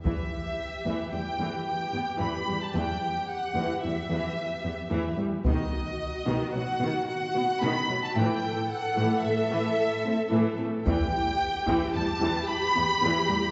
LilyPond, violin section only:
\new Staff \with { instrumentName = "Violin section" } { \time 5/4 \key e \minor \tempo 4 = 111 e''2 g''4 g''4 b''8. a''16 | g''4 fis''4 e''2~ e''8 r8 | dis''2 fis''4 fis''4 b''8. a''16 | g''4 fis''4 e''2~ e''8 r8 |
g''2 a''4 b''2 | }